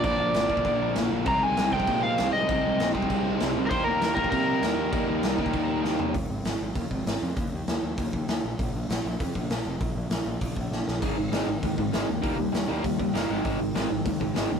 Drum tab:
CC |x---x---x---x---|x---x---x---x---|x---x---x---x---|x---x---x---x---|
HH |----------------|----------------|----------------|----------------|
SD |----o-------o---|----o-------o---|----o-------o---|----o-------o---|
FT |----------------|----------------|----------------|----------------|
BD |o-----ooo-------|o-----ooo-------|o-----ooo-------|o-----ooo-------|

CC |x---x---x-------|----------------|----------------|----------------|
HH |----------------|o---o---o---o---|o---o---o---o---|o---o---o---o---|
SD |----o-------o---|----o-------o---|----o-------o---|----o-------o---|
FT |--------------o-|----------------|----------------|----------------|
BD |o-----ooo-------|o-------o-o-----|o-------o-o-----|o-------o-o-----|

CC |----------------|x---------------|----------------|----------------|
HH |o---o---o-------|o---o---o---o---|o---o---o---o---|o---o---o---o---|
SD |----o-------o-o-|----o-------o---|----o-------o---|----o-------o---|
FT |----------------|----------------|----------------|----------------|
BD |o-------o-o-----|o-------o-o-----|o-------o-o-----|o-------o-o-----|